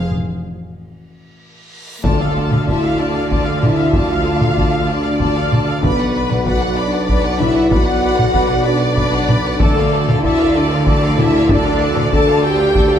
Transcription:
0.09 A2, reverse cymbal
2.00 D2 D3 A3 F4 D5 A5, taiko, impact
2.04 D2 D3 A4
2.20 A4 F5
2.34 F4 D5 A5
2.51 A4 F5, taiko mid
2.67 E4 F4 D5 E5 A5, taiko
2.83 A4 F5
2.97 D4 F4 D5 A5
3.14 A4 F5
3.30 F4 D5 A5, taiko
3.45 A4 F5
3.60 E4 F4 D5 E5 A5, taiko mid
3.78 A4 F5
3.92 F4 D5 F5 A5, taiko
4.08 A4 F5
4.24 F4 D5 A5
4.41 A4 F5, taiko mid
4.55 F4 D5 A5, taiko
4.71 A4 F5
4.86 D4 F4 D5 A5
4.91 D5
5.03 A4 F5
5.18 F4 D5 A5, taiko
5.35 A4 F5
5.51 F4 D5 A5, taiko mid
5.66 A4 F5
5.80 B1 B2 B3 B4 D5 B5, taiko
5.96 B4 D5 F#5
6.12 B4 D5 B5
6.27 B4 D5 F#5, taiko mid
6.44 F#4 B4 D5 F#5 B5, taiko
6.61 B4 D5 F#5
6.76 D4 B4 D5 B5
6.91 B4 D5 F#5
7.07 B4 D5 B5, taiko
7.21 F#5
7.26 B4 D5
7.38 E4 B4 D5 E5 B5, taiko mid
7.54 B4 D5 F#5
7.70 F#4 B4 D5 F#5 B5, taiko
7.86 B4 D5 F#5
8.02 B4 D5 B5
8.17 B4 D5 F#5, taiko mid
8.32 B4 D5 B5, taiko
8.48 B4 D5 F#5
8.63 D4 B4 D5 B5
8.78 B4 F#5
8.83 D5
8.95 B4 D5 B5, taiko
9.12 B4 D5 F#5
9.29 B4 D5 B5, taiko mid
9.46 B4 D5 F#5
9.60 D2 D3 A3 A4 D5 A5, taiko
9.79 A4 D5 F5
9.93 A4 D5 A5
10.08 A4 D5 F5, taiko mid
10.20 E4 A4 D5 A5, taiko
10.26 E5
10.39 A4 D5 F5
10.55 D4 A4 D5 A5
10.70 A4 D5 F5
10.86 A4 D5 A5, taiko
11.00 A4 D5
11.05 F5
11.16 E4 A4 D5 E5 A5, taiko mid
11.32 A4 D5
11.37 F5
11.49 D4 A4 D5 A5, taiko
11.66 A4 D5 F5
11.81 A4 D5 A5
11.95 A4 D5 F5, taiko mid
12.12 A4 D5 A5, taiko
12.29 A4 D5 F5
12.43 G4 A4 D5 G5 A5
12.58 A4 D5 F5
12.74 A4 D5 A5, taiko
12.90 A4 D5 F5

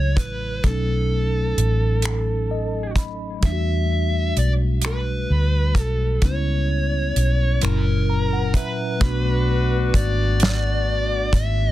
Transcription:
Already playing: C#2 C#3 F#3 A3 E4 C#5
0.17 A1 B4, kick, closed hi-hat
0.63 B1 F#3 A3 C#4 A4, kick, closed hi-hat
0.69 D#4
1.57 A1, closed hi-hat
2.02 finger snap, closed hi-hat
2.51 D#5
2.96 B5, kick, closed hi-hat
3.41 E2 G3 A3 D4, kick, closed hi-hat
3.45 E4 E5
3.52 F#4
4.37 B1 D5, closed hi-hat
4.82 finger snap, closed hi-hat
4.86 B4
5.30 D2
5.75 B1, kick, closed hi-hat
5.82 A4
6.22 C#2 G3 B3 C#4 D#4 C#5, kick, closed hi-hat
6.31 E4
7.16 B1, closed hi-hat
7.61 F#1 A#2 F#3 C#4 E4 A#4, finger snap, closed hi-hat
8.10 A#5
8.33 F#5
8.54 B4 E5, kick, closed hi-hat
9.00 B1 A3 B3 D4 F#4, kick, closed hi-hat
9.05 F#4
9.94 G#1 D5, kick, closed hi-hat
10.40 snare, closed hi-hat
11.33 G#1 E5, kick, closed hi-hat

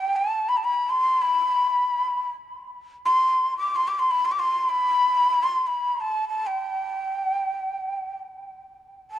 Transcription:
Already playing: G5
0.16 A5
0.49 B5
0.57 A5
0.64 B5
0.90 C6
1.22 B5
3.06 C6
3.58 D6
3.76 C6
3.88 D6
3.99 C6
4.11 B5
4.25 C6
4.32 D6
4.39 C6
4.69 B5
5.43 C6
5.67 B5
6.00 A5
6.29 A5
6.47 G5
9.11 A5

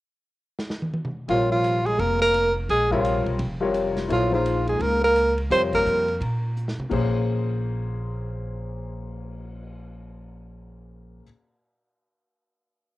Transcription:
0.59 snare
0.70 snare
0.82 high tom
0.94 high tom
1.05 mid tom
1.28 A#1 C3 F3 G3 F4 A#4 C#5, ride
1.50 F3 F4
1.64 hi-hat pedal, ride
1.86 G#3 G#4, ride
1.98 F1 A#3 A#4, ride
2.20 A#3 A#4
2.34 hi-hat pedal, ride
2.68 A#1 G#3 G#4, ride
2.90 C3 F3 G3 F4 A#4 C#5, kick
3.05 hi-hat pedal, ride
3.26 B1, ride
3.39 F1, ride
3.60 C3 G3 F4 A#4 C#5
3.74 hi-hat pedal, ride
3.97 snare, ride
4.08 A#1 F3 F#3 B3 E4 F4 A4 C#5, ride
4.31 F3 A#3 D#4 F4 G#4 C5
4.46 hi-hat pedal, ride
4.67 G#3 G#4, ride
4.80 C#2 A#3 A#4, ride
5.02 A#3 A#4
5.16 hi-hat pedal, ride
5.38 ride
5.50 F2 C3 G3 C4 F4 A#4 C5 C#5, ride
5.73 A#3 A#4, kick, ride
5.86 F2, hi-hat pedal
6.08 ride
6.21 A#2, ride
6.57 hi-hat pedal
6.68 snare
6.78 muted upright bass stroke, mid tom
6.90 A#1 A#2 A#3 C#4 G#4 C5, kick, crash
7.13 cymbal swell

